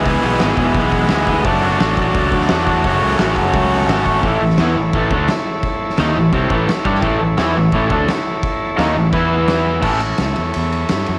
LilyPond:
<<
  \new Staff \with { instrumentName = "Transistor combo organ" } { \time 4/4 \key a \major \tempo 4 = 172 <e' gis' b'>1 | <fis' a' d''>1 | <fis' a' cis''>1 | <e' a' cis''>1~ |
<e' a' cis''>1 | <e' a' cis''>1~ | <e' a' cis''>2 <e' b' e''>2 | <e' a' cis''>1 | }
  \new Staff \with { instrumentName = "Overdriven electric guitar" } { \time 4/4 \key a \major <e, b, e gis b gis'>8 <e gis b gis'>8 <e, b, e gis b gis'>8 <e gis b gis'>4. <e gis b gis'>8 <e gis b gis'>8 | <fis a d' fis'>8 <a d' fis'>8 <fis a d' fis'>8 <a d' fis'>4. <fis a d' fis'>8 <a d' fis'>8 | <fis, cis fis a cis' fis'>8 <fis a cis' fis'>8 <fis, cis fis a cis' fis'>8 <fis a cis' fis'>4. <fis a cis' fis'>8 <fis a cis' fis'>8 | <a, e a>8 <a, e>8 <e b e'>8 <a, e>8 <a, e a>8 <d a d'>8 r4 |
r4 <dis bes dis'>8 <a, e>8 <c g c'>8 <a, e a>8 r8 <g d' g'>8 | <a, e a>8 <a, e>8 <e b e'>8 <a, e>8 <a, e a>8 <d a d'>8 r4 | r4 <dis bes dis'>8 <a, e>8 <e b e'>2 | <a, e a cis' a'>8 r2. r8 | }
  \new Staff \with { instrumentName = "Fingered electric bass" } { \clef bass \time 4/4 \key a \major cis,8 b,,8 gis,,8 e,,8 b,,4 d,4 | fis,,4 a,,4 cis,8 d,8 e,4 | fis,,8 cis,8 a,,8 fis,,8 cis,4 gis,,4 | a,,8 a,,8 e,8 a,,8 a,,8 d,8 r4 |
r4 dis,8 a,,8 c,8 a,,8 r8 g,8 | a,,8 a,,8 e,8 a,,8 a,,8 d,8 r4 | r4 dis,8 a,,8 e,2 | a,,4 cis,8 e,8 e,4 g,8 fis,8 | }
  \new DrumStaff \with { instrumentName = "Drums" } \drummode { \time 4/4 <hho bd>8 hho8 <hho sn>8 <hho bd>8 <hho bd>8 <hho bd>8 <hho sn>8 <hho bd>8 | <hho bd>8 hho8 <hho sn>8 <hho bd>8 <hho bd>8 <hho bd>16 sn16 <hho sn>16 sn16 <hho bd>8 | <hho bd>8 hho8 <hho sn>8 <hho bd>8 <hho bd>8 hho16 sn16 <hho sn>8 <hho bd>8 | <cymc bd>8. sn16 <cymc sn>4 <cymc bd>8 bd8 <cymc sn>4 |
<cymc bd>8. sn16 <cymc sn>4 <cymc bd>8 bd8 <cymc sn>8 bd16 sn16 | <cymc bd>4 <cymc sn>4 <cymc bd>8 bd8 <cymc sn>4 | <cymc bd>4 <cymc sn>4 <cymc bd>4 <cymc sn>4 | <cymc bd>8 cymr8 <cymr sn>8 cymr8 cymr8 cymr8 <cymr sn>8 cymr8 | }
>>